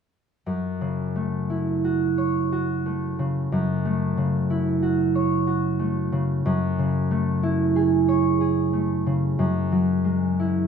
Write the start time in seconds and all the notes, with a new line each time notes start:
0.46 F#2
0.81 C#3
1.16 A3
1.50 E4
1.84 F#4
2.18 C#5
2.52 F#4
2.86 A3
3.19 C#3
3.52 F#2
3.85 A3
4.17 C#3
4.50 E4
4.82 F#4
5.15 C#5
5.47 F#4
5.79 A3
6.12 C#3
6.45 F#2
6.79 C#3
7.11 A3
7.43 E4
7.76 G#4
8.08 C#5
8.41 G#4
8.73 A3
9.06 C#3
9.39 F#2
9.72 F#3
10.04 G#3
10.39 E4